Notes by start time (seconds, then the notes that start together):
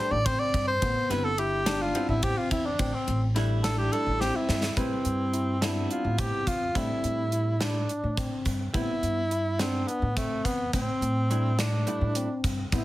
Already playing: G3 A3 D4 C5
0.00 D4 G4
0.11 A1 D5
0.26 C4 C5, kick, snare, ride
0.39 D5
0.54 G2, kick, ride
0.67 C5
0.82 A1 B3, kick, ride
1.10 G1 G3 B3 C4 E4 B4, snare, ride
1.24 A4
1.38 E4 G4, ride
1.66 D4, snare, ride
1.82 F4
1.95 G3 B3 C4 E4, ride
2.09 A1 E4
2.23 C4 G4, kick, ride
2.38 F4
2.51 E2 E4, kick, ride
2.66 D4
2.79 A1 C4, kick, ride
2.94 C4
3.07 A1, ride
3.36 G3 A3 D4 E4, snare, ride
3.64 D4 A4, snare, ride
3.78 G4
3.92 G3 A3 D4 E4 A4, ride
4.07 A1
4.21 C4 G4, snare
4.35 E4
4.49 G2, snare
4.63 snare
4.77 A2 G3 C4 E4 B4, kick, closed hi-hat
5.05 G2, closed hi-hat
5.33 E4, closed hi-hat
5.61 G3 B3 C4 D4 E4, snare, closed hi-hat
5.91 F4, closed hi-hat
6.04 A2
6.18 C4 G4, kick, closed hi-hat
6.47 E2 F4, kick, closed hi-hat
6.75 A2 G3 A3 C4 D4 E4, kick, closed hi-hat
7.04 A2, closed hi-hat
7.32 E4, closed hi-hat
7.60 G3 A3 D4 E4, snare, closed hi-hat
7.89 closed hi-hat
8.04 A2
8.17 C4, kick, closed hi-hat
8.45 G2, kick, closed hi-hat
8.74 A2 G3 B3 C4 E4, kick, closed hi-hat
9.02 G2, closed hi-hat
9.31 E4, closed hi-hat
9.59 G3 B3 C4 D4, snare, closed hi-hat
9.88 B3, closed hi-hat
10.02 A2
10.17 A3 C4, kick, closed hi-hat
10.44 E2 B3, kick, closed hi-hat
10.73 A2 C4, kick, closed hi-hat
11.01 A2, closed hi-hat
11.30 G3 A3 D4 E4, closed hi-hat
11.59 D4, snare, closed hi-hat
11.87 G3 A3 D4 E4, closed hi-hat
12.01 A2
12.15 C4, closed hi-hat
12.44 G2, kick, closed hi-hat
12.72 A2 G3 B3 C4 E4, kick, closed hi-hat